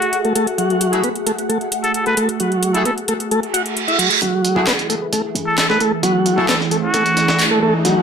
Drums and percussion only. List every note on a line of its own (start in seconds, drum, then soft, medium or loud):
0.02 closed hi-hat soft
0.13 closed hi-hat soft
0.25 closed hi-hat soft
0.35 closed hi-hat medium
0.47 closed hi-hat soft
0.58 closed hi-hat soft
0.70 closed hi-hat soft
0.81 closed hi-hat medium
0.93 closed hi-hat soft
1.04 closed hi-hat soft
1.15 closed hi-hat soft
1.27 closed hi-hat medium
1.39 closed hi-hat soft
1.50 closed hi-hat soft
1.61 closed hi-hat soft
1.72 closed hi-hat medium
1.84 closed hi-hat soft
1.94 closed hi-hat soft
2.06 closed hi-hat soft
2.17 closed hi-hat medium
2.29 closed hi-hat soft
2.40 closed hi-hat soft
2.52 closed hi-hat soft
2.63 closed hi-hat medium
2.74 closed hi-hat soft
2.85 closed hi-hat soft
2.98 closed hi-hat soft
3.08 closed hi-hat medium
3.20 closed hi-hat soft
3.31 closed hi-hat soft
3.43 closed hi-hat soft
3.54 closed hi-hat medium
3.66 closed hi-hat soft
3.77 closed hi-hat soft
3.88 closed hi-hat soft
3.99 closed hi-hat medium
4.11 closed hi-hat soft
4.22 kick loud
4.22 closed hi-hat medium
4.45 closed hi-hat medium
4.56 kick medium
4.67 snare loud
4.67 clap loud
4.67 closed hi-hat medium
4.79 closed hi-hat soft
4.90 closed hi-hat medium
5.13 kick loud
5.13 closed hi-hat medium
5.35 closed hi-hat medium
5.58 snare loud
5.58 clap loud
5.58 closed hi-hat medium
5.70 snare medium
5.80 closed hi-hat medium
6.03 kick loud
6.03 closed hi-hat medium
6.26 closed hi-hat medium
6.38 kick medium
6.49 snare loud
6.49 clap loud
6.49 closed hi-hat medium
6.61 snare medium
6.71 closed hi-hat medium
6.94 kick loud
6.94 closed hi-hat medium
7.06 closed hi-hat soft
7.17 snare soft
7.17 closed hi-hat medium
7.28 snare loud
7.39 clap loud
7.39 closed hi-hat medium
7.85 snare soft
7.85 closed hi-hat medium